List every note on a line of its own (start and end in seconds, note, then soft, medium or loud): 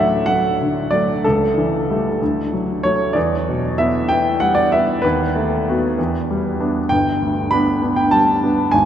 0.00 1.20 D2 medium
0.00 0.16 A2 soft
0.00 0.25 F#3 soft
0.00 0.25 A3 medium
0.00 0.91 D5 medium
0.00 1.27 E5 medium
0.00 0.26 F#5 medium
0.26 0.57 F#3 soft
0.26 0.57 A3 soft
0.26 0.91 F#5 medium
0.61 1.12 D3 soft
0.91 1.21 F#3 soft
0.91 1.21 A3 soft
0.91 1.23 D5 medium
1.24 2.18 C#2 medium
1.24 2.52 A4 medium
1.57 2.08 E3 soft
1.90 2.18 G3 soft
1.90 2.19 A3 medium
2.22 3.14 D2 medium
2.53 2.84 F#3 soft
2.83 3.13 F#3 soft
2.83 3.14 A3 soft
2.83 3.15 C#5 medium
3.13 5.00 E2 medium
3.13 3.77 D5 medium
3.49 3.98 B2 soft
3.78 4.07 B3 soft
3.78 4.07 E4 medium
3.78 4.10 E5 medium
4.09 4.38 B3 soft
4.09 4.39 E4 soft
4.09 4.41 G5 medium
4.40 4.92 G3 soft
4.40 4.56 F#5 medium
4.55 4.71 D5 medium
4.72 5.01 B3 soft
4.72 5.01 E4 medium
4.72 5.04 E5 medium
5.02 5.95 D#2 medium
5.02 6.28 B4 medium
5.36 5.86 A3 soft
5.69 5.96 B3 soft
5.69 5.96 F#4 medium
5.98 6.87 E2 medium
6.31 6.79 G3 medium
6.60 6.87 B3 soft
6.60 6.87 D4 soft
6.89 8.70 G1 medium
6.89 7.51 G5 medium
7.22 7.70 D2 soft
7.51 7.79 B3 soft
7.51 7.79 D4 medium
7.51 7.96 B5 medium
7.81 8.08 B3 soft
7.81 8.09 D4 soft
7.96 8.11 G5 medium
8.11 8.61 G3 soft
8.11 8.73 A5 medium
8.43 8.71 B3 soft
8.43 8.71 D4 soft
8.71 8.85 G#1 medium
8.71 8.85 G#5 medium